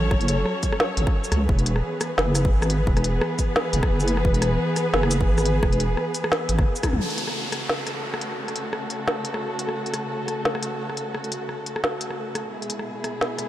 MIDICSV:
0, 0, Header, 1, 5, 480
1, 0, Start_track
1, 0, Key_signature, 3, "minor"
1, 0, Tempo, 344828
1, 155, Time_signature, 4, 2, 24, 8
1, 18774, End_track
2, 0, Start_track
2, 0, Title_t, "String section"
2, 0, Program_c, 0, 48
2, 0, Note_on_c, 0, 54, 87
2, 0, Note_on_c, 0, 61, 79
2, 0, Note_on_c, 0, 69, 81
2, 0, Note_on_c, 0, 73, 96
2, 2020, Note_off_c, 0, 54, 0
2, 2021, Note_off_c, 0, 61, 0
2, 2021, Note_off_c, 0, 69, 0
2, 2021, Note_off_c, 0, 73, 0
2, 2072, Note_on_c, 0, 52, 85
2, 2073, Note_on_c, 0, 59, 78
2, 2074, Note_on_c, 0, 68, 82
2, 2074, Note_on_c, 0, 71, 94
2, 9698, Note_off_c, 0, 52, 0
2, 9698, Note_off_c, 0, 59, 0
2, 9699, Note_off_c, 0, 68, 0
2, 9699, Note_off_c, 0, 71, 0
2, 9755, Note_on_c, 0, 57, 66
2, 9756, Note_on_c, 0, 49, 75
2, 9756, Note_on_c, 0, 69, 82
2, 9757, Note_on_c, 0, 66, 69
2, 17379, Note_off_c, 0, 57, 0
2, 17380, Note_off_c, 0, 49, 0
2, 17380, Note_off_c, 0, 66, 0
2, 17380, Note_off_c, 0, 69, 0
2, 17433, Note_on_c, 0, 47, 77
2, 17433, Note_on_c, 0, 64, 68
2, 17434, Note_on_c, 0, 56, 70
2, 17434, Note_on_c, 0, 68, 85
2, 18774, Note_off_c, 0, 47, 0
2, 18774, Note_off_c, 0, 56, 0
2, 18774, Note_off_c, 0, 64, 0
2, 18774, Note_off_c, 0, 68, 0
2, 18774, End_track
3, 0, Start_track
3, 0, Title_t, "Wobble bass"
3, 0, Program_c, 1, 39
3, 0, Note_on_c, 1, 33, 105
3, 143, Note_off_c, 1, 33, 0
3, 156, Note_on_c, 1, 30, 100
3, 622, Note_off_c, 1, 30, 0
3, 1355, Note_on_c, 1, 32, 87
3, 1478, Note_off_c, 1, 32, 0
3, 1835, Note_on_c, 1, 37, 95
3, 2058, Note_off_c, 1, 37, 0
3, 2075, Note_on_c, 1, 28, 97
3, 2542, Note_off_c, 1, 28, 0
3, 3038, Note_on_c, 1, 30, 83
3, 3503, Note_off_c, 1, 30, 0
3, 3516, Note_on_c, 1, 32, 110
3, 3982, Note_off_c, 1, 32, 0
3, 3997, Note_on_c, 1, 28, 99
3, 4462, Note_off_c, 1, 28, 0
3, 5196, Note_on_c, 1, 30, 86
3, 5319, Note_off_c, 1, 30, 0
3, 5437, Note_on_c, 1, 30, 86
3, 5902, Note_off_c, 1, 30, 0
3, 5915, Note_on_c, 1, 28, 93
3, 6381, Note_off_c, 1, 28, 0
3, 6875, Note_on_c, 1, 30, 84
3, 7341, Note_off_c, 1, 30, 0
3, 7355, Note_on_c, 1, 32, 110
3, 7821, Note_off_c, 1, 32, 0
3, 7834, Note_on_c, 1, 28, 96
3, 8301, Note_off_c, 1, 28, 0
3, 9037, Note_on_c, 1, 32, 97
3, 9259, Note_off_c, 1, 32, 0
3, 9650, Note_on_c, 1, 37, 86
3, 9747, Note_off_c, 1, 37, 0
3, 18774, End_track
4, 0, Start_track
4, 0, Title_t, "Downlifter"
4, 0, Program_c, 2, 103
4, 9754, Note_on_c, 2, 60, 69
4, 13594, Note_off_c, 2, 60, 0
4, 18774, End_track
5, 0, Start_track
5, 0, Title_t, "Drums"
5, 153, Note_on_c, 9, 37, 72
5, 155, Note_on_c, 9, 36, 119
5, 287, Note_on_c, 9, 42, 38
5, 292, Note_off_c, 9, 37, 0
5, 294, Note_off_c, 9, 36, 0
5, 393, Note_off_c, 9, 42, 0
5, 393, Note_on_c, 9, 42, 80
5, 533, Note_off_c, 9, 42, 0
5, 634, Note_on_c, 9, 37, 53
5, 773, Note_off_c, 9, 37, 0
5, 875, Note_on_c, 9, 36, 66
5, 875, Note_on_c, 9, 42, 64
5, 875, Note_on_c, 9, 82, 37
5, 1009, Note_on_c, 9, 37, 74
5, 1014, Note_off_c, 9, 36, 0
5, 1014, Note_off_c, 9, 42, 0
5, 1014, Note_off_c, 9, 82, 0
5, 1113, Note_on_c, 9, 38, 125
5, 1148, Note_off_c, 9, 37, 0
5, 1252, Note_off_c, 9, 38, 0
5, 1352, Note_on_c, 9, 42, 77
5, 1487, Note_on_c, 9, 37, 50
5, 1489, Note_on_c, 9, 36, 114
5, 1491, Note_off_c, 9, 42, 0
5, 1626, Note_off_c, 9, 37, 0
5, 1628, Note_off_c, 9, 36, 0
5, 1726, Note_on_c, 9, 82, 37
5, 1834, Note_on_c, 9, 37, 77
5, 1834, Note_on_c, 9, 42, 65
5, 1866, Note_off_c, 9, 82, 0
5, 1973, Note_off_c, 9, 37, 0
5, 1973, Note_off_c, 9, 42, 0
5, 2074, Note_on_c, 9, 36, 114
5, 2208, Note_on_c, 9, 42, 35
5, 2214, Note_off_c, 9, 36, 0
5, 2313, Note_off_c, 9, 42, 0
5, 2313, Note_on_c, 9, 42, 76
5, 2446, Note_on_c, 9, 37, 55
5, 2452, Note_off_c, 9, 42, 0
5, 2586, Note_off_c, 9, 37, 0
5, 2795, Note_on_c, 9, 37, 77
5, 2795, Note_on_c, 9, 42, 63
5, 2795, Note_on_c, 9, 82, 36
5, 2934, Note_off_c, 9, 37, 0
5, 2934, Note_off_c, 9, 42, 0
5, 2934, Note_off_c, 9, 82, 0
5, 3033, Note_on_c, 9, 38, 120
5, 3172, Note_off_c, 9, 38, 0
5, 3273, Note_on_c, 9, 37, 52
5, 3273, Note_on_c, 9, 42, 75
5, 3273, Note_on_c, 9, 82, 65
5, 3409, Note_on_c, 9, 36, 110
5, 3412, Note_off_c, 9, 37, 0
5, 3412, Note_off_c, 9, 42, 0
5, 3412, Note_off_c, 9, 82, 0
5, 3548, Note_off_c, 9, 36, 0
5, 3651, Note_on_c, 9, 37, 78
5, 3651, Note_on_c, 9, 82, 38
5, 3757, Note_on_c, 9, 42, 65
5, 3790, Note_off_c, 9, 37, 0
5, 3790, Note_off_c, 9, 82, 0
5, 3896, Note_off_c, 9, 42, 0
5, 3996, Note_on_c, 9, 36, 106
5, 4130, Note_on_c, 9, 37, 56
5, 4130, Note_on_c, 9, 42, 36
5, 4135, Note_off_c, 9, 36, 0
5, 4235, Note_off_c, 9, 42, 0
5, 4235, Note_on_c, 9, 42, 77
5, 4269, Note_off_c, 9, 37, 0
5, 4374, Note_off_c, 9, 42, 0
5, 4474, Note_on_c, 9, 37, 87
5, 4614, Note_off_c, 9, 37, 0
5, 4715, Note_on_c, 9, 42, 64
5, 4715, Note_on_c, 9, 82, 40
5, 4716, Note_on_c, 9, 36, 61
5, 4854, Note_off_c, 9, 42, 0
5, 4854, Note_off_c, 9, 82, 0
5, 4855, Note_off_c, 9, 36, 0
5, 4954, Note_on_c, 9, 37, 56
5, 4954, Note_on_c, 9, 38, 116
5, 5093, Note_off_c, 9, 37, 0
5, 5093, Note_off_c, 9, 38, 0
5, 5194, Note_on_c, 9, 42, 76
5, 5329, Note_on_c, 9, 36, 102
5, 5329, Note_on_c, 9, 37, 78
5, 5333, Note_off_c, 9, 42, 0
5, 5468, Note_off_c, 9, 36, 0
5, 5468, Note_off_c, 9, 37, 0
5, 5568, Note_on_c, 9, 82, 41
5, 5674, Note_on_c, 9, 42, 67
5, 5707, Note_off_c, 9, 82, 0
5, 5808, Note_on_c, 9, 37, 56
5, 5814, Note_off_c, 9, 42, 0
5, 5914, Note_on_c, 9, 36, 107
5, 5947, Note_off_c, 9, 37, 0
5, 6046, Note_on_c, 9, 42, 38
5, 6053, Note_off_c, 9, 36, 0
5, 6151, Note_off_c, 9, 42, 0
5, 6151, Note_on_c, 9, 37, 83
5, 6151, Note_on_c, 9, 42, 80
5, 6290, Note_off_c, 9, 37, 0
5, 6290, Note_off_c, 9, 42, 0
5, 6631, Note_on_c, 9, 37, 52
5, 6631, Note_on_c, 9, 42, 67
5, 6631, Note_on_c, 9, 82, 38
5, 6770, Note_off_c, 9, 37, 0
5, 6770, Note_off_c, 9, 42, 0
5, 6770, Note_off_c, 9, 82, 0
5, 6871, Note_on_c, 9, 38, 111
5, 7005, Note_on_c, 9, 37, 83
5, 7010, Note_off_c, 9, 38, 0
5, 7111, Note_on_c, 9, 42, 76
5, 7111, Note_on_c, 9, 82, 68
5, 7144, Note_off_c, 9, 37, 0
5, 7247, Note_on_c, 9, 36, 97
5, 7250, Note_off_c, 9, 42, 0
5, 7250, Note_off_c, 9, 82, 0
5, 7386, Note_off_c, 9, 36, 0
5, 7487, Note_on_c, 9, 37, 54
5, 7487, Note_on_c, 9, 82, 38
5, 7593, Note_on_c, 9, 42, 67
5, 7626, Note_off_c, 9, 37, 0
5, 7626, Note_off_c, 9, 82, 0
5, 7732, Note_off_c, 9, 42, 0
5, 7833, Note_on_c, 9, 36, 113
5, 7834, Note_on_c, 9, 37, 85
5, 7969, Note_on_c, 9, 42, 40
5, 7972, Note_off_c, 9, 36, 0
5, 7973, Note_off_c, 9, 37, 0
5, 8074, Note_off_c, 9, 42, 0
5, 8074, Note_on_c, 9, 42, 82
5, 8213, Note_off_c, 9, 42, 0
5, 8314, Note_on_c, 9, 37, 61
5, 8453, Note_off_c, 9, 37, 0
5, 8554, Note_on_c, 9, 42, 68
5, 8554, Note_on_c, 9, 82, 39
5, 8687, Note_on_c, 9, 37, 86
5, 8694, Note_off_c, 9, 42, 0
5, 8694, Note_off_c, 9, 82, 0
5, 8793, Note_on_c, 9, 38, 120
5, 8827, Note_off_c, 9, 37, 0
5, 8932, Note_off_c, 9, 38, 0
5, 9033, Note_on_c, 9, 42, 81
5, 9166, Note_on_c, 9, 37, 56
5, 9168, Note_on_c, 9, 36, 104
5, 9172, Note_off_c, 9, 42, 0
5, 9305, Note_off_c, 9, 37, 0
5, 9307, Note_off_c, 9, 36, 0
5, 9405, Note_on_c, 9, 82, 38
5, 9512, Note_off_c, 9, 82, 0
5, 9512, Note_on_c, 9, 37, 85
5, 9512, Note_on_c, 9, 42, 65
5, 9512, Note_on_c, 9, 48, 63
5, 9512, Note_on_c, 9, 82, 39
5, 9514, Note_on_c, 9, 36, 62
5, 9647, Note_on_c, 9, 47, 73
5, 9651, Note_off_c, 9, 37, 0
5, 9651, Note_off_c, 9, 42, 0
5, 9651, Note_off_c, 9, 48, 0
5, 9651, Note_off_c, 9, 82, 0
5, 9654, Note_off_c, 9, 36, 0
5, 9786, Note_off_c, 9, 47, 0
5, 9888, Note_on_c, 9, 42, 34
5, 9992, Note_off_c, 9, 42, 0
5, 9992, Note_on_c, 9, 42, 76
5, 10127, Note_on_c, 9, 37, 50
5, 10132, Note_off_c, 9, 42, 0
5, 10266, Note_off_c, 9, 37, 0
5, 10473, Note_on_c, 9, 37, 74
5, 10473, Note_on_c, 9, 42, 62
5, 10612, Note_off_c, 9, 37, 0
5, 10612, Note_off_c, 9, 42, 0
5, 10711, Note_on_c, 9, 38, 104
5, 10850, Note_off_c, 9, 38, 0
5, 10950, Note_on_c, 9, 37, 46
5, 10950, Note_on_c, 9, 42, 68
5, 11089, Note_off_c, 9, 37, 0
5, 11089, Note_off_c, 9, 42, 0
5, 11327, Note_on_c, 9, 37, 70
5, 11434, Note_on_c, 9, 42, 61
5, 11466, Note_off_c, 9, 37, 0
5, 11573, Note_off_c, 9, 42, 0
5, 11807, Note_on_c, 9, 37, 45
5, 11807, Note_on_c, 9, 42, 34
5, 11910, Note_off_c, 9, 42, 0
5, 11910, Note_on_c, 9, 42, 73
5, 11947, Note_off_c, 9, 37, 0
5, 12049, Note_off_c, 9, 42, 0
5, 12150, Note_on_c, 9, 37, 74
5, 12290, Note_off_c, 9, 37, 0
5, 12390, Note_on_c, 9, 42, 59
5, 12530, Note_off_c, 9, 42, 0
5, 12633, Note_on_c, 9, 37, 47
5, 12633, Note_on_c, 9, 38, 112
5, 12772, Note_off_c, 9, 37, 0
5, 12772, Note_off_c, 9, 38, 0
5, 12872, Note_on_c, 9, 42, 69
5, 13004, Note_on_c, 9, 37, 75
5, 13011, Note_off_c, 9, 42, 0
5, 13143, Note_off_c, 9, 37, 0
5, 13350, Note_on_c, 9, 42, 62
5, 13483, Note_on_c, 9, 37, 50
5, 13489, Note_off_c, 9, 42, 0
5, 13623, Note_off_c, 9, 37, 0
5, 13726, Note_on_c, 9, 42, 34
5, 13830, Note_off_c, 9, 42, 0
5, 13830, Note_on_c, 9, 37, 68
5, 13830, Note_on_c, 9, 42, 74
5, 13970, Note_off_c, 9, 37, 0
5, 13970, Note_off_c, 9, 42, 0
5, 14311, Note_on_c, 9, 37, 46
5, 14311, Note_on_c, 9, 42, 58
5, 14450, Note_off_c, 9, 37, 0
5, 14450, Note_off_c, 9, 42, 0
5, 14550, Note_on_c, 9, 38, 114
5, 14685, Note_on_c, 9, 37, 71
5, 14689, Note_off_c, 9, 38, 0
5, 14791, Note_on_c, 9, 42, 73
5, 14824, Note_off_c, 9, 37, 0
5, 14930, Note_off_c, 9, 42, 0
5, 15166, Note_on_c, 9, 37, 48
5, 15272, Note_on_c, 9, 42, 59
5, 15305, Note_off_c, 9, 37, 0
5, 15411, Note_off_c, 9, 42, 0
5, 15514, Note_on_c, 9, 37, 66
5, 15648, Note_on_c, 9, 42, 32
5, 15653, Note_off_c, 9, 37, 0
5, 15754, Note_off_c, 9, 42, 0
5, 15754, Note_on_c, 9, 42, 72
5, 15893, Note_off_c, 9, 42, 0
5, 15994, Note_on_c, 9, 37, 47
5, 16133, Note_off_c, 9, 37, 0
5, 16236, Note_on_c, 9, 42, 54
5, 16370, Note_on_c, 9, 37, 66
5, 16375, Note_off_c, 9, 42, 0
5, 16477, Note_on_c, 9, 38, 114
5, 16509, Note_off_c, 9, 37, 0
5, 16616, Note_off_c, 9, 38, 0
5, 16716, Note_on_c, 9, 42, 66
5, 16850, Note_on_c, 9, 37, 45
5, 16855, Note_off_c, 9, 42, 0
5, 16989, Note_off_c, 9, 37, 0
5, 17194, Note_on_c, 9, 37, 70
5, 17194, Note_on_c, 9, 42, 60
5, 17333, Note_off_c, 9, 37, 0
5, 17333, Note_off_c, 9, 42, 0
5, 17570, Note_on_c, 9, 42, 32
5, 17675, Note_off_c, 9, 42, 0
5, 17675, Note_on_c, 9, 42, 72
5, 17809, Note_on_c, 9, 37, 49
5, 17814, Note_off_c, 9, 42, 0
5, 17948, Note_off_c, 9, 37, 0
5, 18153, Note_on_c, 9, 37, 69
5, 18153, Note_on_c, 9, 42, 53
5, 18293, Note_off_c, 9, 37, 0
5, 18293, Note_off_c, 9, 42, 0
5, 18392, Note_on_c, 9, 38, 104
5, 18532, Note_off_c, 9, 38, 0
5, 18632, Note_on_c, 9, 37, 45
5, 18632, Note_on_c, 9, 42, 69
5, 18771, Note_off_c, 9, 37, 0
5, 18771, Note_off_c, 9, 42, 0
5, 18774, End_track
0, 0, End_of_file